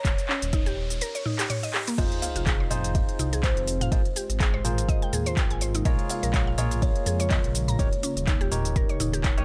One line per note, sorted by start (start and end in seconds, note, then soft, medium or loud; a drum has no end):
0.00 1.45 C#5 loud
0.00 riser medium
0.05 0.16 D#1 loud
0.05 kick loud
0.05 clap medium
0.05 closed hi-hat medium
0.05 shaker medium
0.18 closed hi-hat soft
0.18 shaker soft
0.29 0.36 C#4 medium
0.29 clap medium
0.42 0.74 D#1 loud
0.42 closed hi-hat soft
0.42 shaker medium
0.53 0.65 D#4 loud
0.53 kick loud
0.53 closed hi-hat medium
0.53 shaker medium
0.66 0.77 G4 loud
0.66 closed hi-hat soft
0.66 shaker soft
0.77 1.01 D#1 medium
0.90 closed hi-hat soft
0.90 shaker medium
1.01 1.14 A#4 loud
1.01 closed hi-hat medium
1.01 shaker medium
1.15 1.25 C#5 medium
1.15 closed hi-hat soft
1.15 shaker soft
1.26 1.38 D#4 medium
1.26 mid tom medium
1.39 1.49 G4 loud
1.39 clap medium
1.39 closed hi-hat soft
1.39 shaker medium
1.50 1.62 C#5 loud
1.50 closed hi-hat medium
1.50 mid tom medium
1.50 shaker medium
1.63 1.69 D#5 medium
1.63 closed hi-hat soft
1.63 shaker soft
1.74 1.81 G4 medium
1.74 clap medium
1.87 1.97 A#3 medium
1.87 closed hi-hat soft
1.87 shaker medium
1.98 2.09 F1 loud
1.98 3.90 D#3 medium
1.98 7.75 G#3 medium
1.98 3.90 C4 medium
1.98 2.68 D#4 medium
1.98 2.11 F4 medium
1.98 2.68 F4 medium
1.98 3.90 F4 medium
1.98 2.68 G#4 medium
1.98 2.68 C5 loud
1.98 2.23 D#5 loud
1.98 kick loud
1.98 closed hi-hat medium
1.98 crash loud
1.98 sub drop medium
1.98 shaker soft
2.12 closed hi-hat soft
2.22 2.72 F5 loud
2.22 open hi-hat medium
2.22 shaker medium
2.36 2.68 F1 loud
2.36 2.46 F4 medium
2.36 closed hi-hat soft
2.36 shaker medium
2.46 2.59 G#4 medium
2.46 kick loud
2.46 clap loud
2.46 closed hi-hat medium
2.46 shaker soft
2.60 2.70 C5 medium
2.71 3.05 F1 medium
2.71 3.89 D#4 medium
2.71 3.89 F4 medium
2.71 3.89 G#4 medium
2.71 3.89 C5 loud
2.71 2.93 D#5 loud
2.71 mid tom medium
2.71 open hi-hat loud
2.71 shaker medium
2.84 closed hi-hat soft
2.84 shaker medium
2.95 3.45 D#5 loud
2.95 kick loud
2.95 closed hi-hat medium
2.95 shaker soft
3.09 closed hi-hat soft
3.19 3.53 C2 medium
3.19 3.27 D#4 medium
3.19 open hi-hat medium
3.19 shaker medium
3.33 3.43 G#4 medium
3.33 closed hi-hat soft
3.33 shaker medium
3.43 3.93 C5 medium
3.43 kick loud
3.43 clap loud
3.43 closed hi-hat medium
3.43 shaker soft
3.57 3.89 F1 medium
3.57 closed hi-hat soft
3.67 open hi-hat medium
3.67 shaker medium
3.81 3.91 F5 loud
3.81 closed hi-hat soft
3.81 mid tom medium
3.81 shaker medium
3.92 4.03 G#1 loud
3.92 5.83 C3 medium
3.92 9.45 A#3 medium
3.92 7.75 F4 medium
3.92 4.01 F4 medium
3.92 4.01 G#4 medium
3.92 4.01 A#4 medium
3.92 4.01 C5 medium
3.92 5.57 D#5 medium
3.92 kick loud
3.92 closed hi-hat medium
3.92 shaker soft
4.05 closed hi-hat soft
4.16 4.23 G4 medium
4.16 open hi-hat medium
4.16 shaker loud
4.30 4.61 G#1 loud
4.30 closed hi-hat soft
4.30 shaker medium
4.40 4.53 G#4 loud
4.40 kick loud
4.40 clap loud
4.40 closed hi-hat medium
4.40 shaker soft
4.54 4.64 C5 loud
4.65 4.98 G#1 medium
4.65 5.83 F4 medium
4.65 5.83 G#4 medium
4.65 5.83 A#4 medium
4.65 5.83 C5 medium
4.65 mid tom loud
4.65 open hi-hat medium
4.65 shaker loud
4.78 closed hi-hat soft
4.78 shaker medium
4.89 5.01 D#5 loud
4.89 kick loud
4.89 closed hi-hat medium
4.89 shaker soft
5.02 5.12 G5 medium
5.02 closed hi-hat soft
5.13 5.47 D#2 medium
5.13 5.25 G#4 medium
5.13 mid tom medium
5.13 open hi-hat medium
5.13 shaker loud
5.26 5.36 C5 loud
5.26 closed hi-hat soft
5.26 shaker medium
5.37 5.49 G5 loud
5.37 kick loud
5.37 clap loud
5.37 closed hi-hat medium
5.37 shaker soft
5.50 5.82 G#1 medium
5.50 5.56 G#5 medium
5.50 closed hi-hat soft
5.61 5.69 C5 medium
5.61 open hi-hat medium
5.61 shaker loud
5.75 5.84 D#4 medium
5.75 closed hi-hat soft
5.75 shaker medium
5.85 5.96 A#1 loud
5.85 9.45 C#3 medium
5.85 6.55 F4 loud
5.85 6.55 G#4 medium
5.85 5.98 A#4 medium
5.85 6.55 A#4 medium
5.85 6.55 C#5 loud
5.85 6.08 D#5 loud
5.85 kick loud
5.85 closed hi-hat medium
5.85 shaker soft
5.99 closed hi-hat soft
6.10 6.60 F5 loud
6.10 open hi-hat medium
6.10 shaker medium
6.23 6.55 A#1 loud
6.23 6.33 A#4 medium
6.23 closed hi-hat soft
6.23 shaker medium
6.34 6.46 C#5 medium
6.34 kick loud
6.34 clap loud
6.34 closed hi-hat medium
6.34 shaker soft
6.47 6.58 F5 medium
6.58 6.92 A#1 medium
6.58 7.76 F4 medium
6.58 7.76 G#4 medium
6.58 7.76 A#4 medium
6.58 7.76 C#5 loud
6.58 6.83 D#5 loud
6.58 mid tom loud
6.58 open hi-hat medium
6.58 shaker loud
6.71 closed hi-hat soft
6.71 shaker medium
6.82 7.32 C#5 medium
6.82 kick loud
6.82 closed hi-hat medium
6.82 shaker soft
6.96 closed hi-hat soft
7.06 7.40 F2 loud
7.06 7.14 G#4 medium
7.06 open hi-hat medium
7.06 shaker loud
7.20 7.30 C#5 medium
7.20 closed hi-hat soft
7.20 shaker medium
7.31 7.76 D#5 loud
7.31 kick loud
7.31 clap loud
7.31 closed hi-hat medium
7.31 shaker soft
7.44 7.76 A#1 medium
7.44 closed hi-hat soft
7.55 open hi-hat medium
7.55 shaker loud
7.68 7.78 A#5 loud
7.68 closed hi-hat soft
7.68 mid tom medium
7.68 shaker medium
7.79 7.90 D#1 loud
7.79 9.45 G3 medium
7.79 7.88 D#4 medium
7.79 9.45 D#4 medium
7.79 7.88 G4 medium
7.79 7.88 A#4 medium
7.79 7.88 C#5 loud
7.79 9.44 C#5 medium
7.79 kick loud
7.79 closed hi-hat medium
7.79 shaker soft
7.93 closed hi-hat soft
8.03 8.10 C#4 medium
8.03 open hi-hat medium
8.03 shaker loud
8.16 8.48 D#1 loud
8.16 closed hi-hat soft
8.16 shaker medium
8.27 8.39 D#4 loud
8.27 kick loud
8.27 clap loud
8.27 closed hi-hat medium
8.27 shaker soft
8.41 8.51 G4 loud
8.41 closed hi-hat soft
8.51 8.85 D#1 medium
8.51 9.35 D#4 medium
8.51 9.35 G4 medium
8.51 9.35 A#4 medium
8.51 9.35 C#5 medium
8.51 mid tom loud
8.51 open hi-hat medium
8.51 shaker loud
8.65 closed hi-hat soft
8.65 shaker medium
8.76 8.88 A#4 loud
8.76 kick loud
8.76 closed hi-hat medium
8.76 shaker soft
8.89 8.99 C#5 medium
8.89 closed hi-hat soft
9.00 9.39 D#1 medium
9.00 9.12 D#4 medium
9.00 mid tom medium
9.00 open hi-hat medium
9.00 shaker medium
9.13 9.23 G4 loud
9.13 closed hi-hat soft
9.13 shaker medium
9.24 9.36 C#5 loud
9.24 kick loud
9.24 clap loud
9.24 closed hi-hat medium
9.24 shaker soft
9.37 9.45 D#2 medium
9.37 9.45 D#4 medium
9.37 9.45 G4 medium
9.37 9.45 A#4 medium
9.37 9.45 C#5 loud
9.37 9.44 D#5 medium
9.37 closed hi-hat soft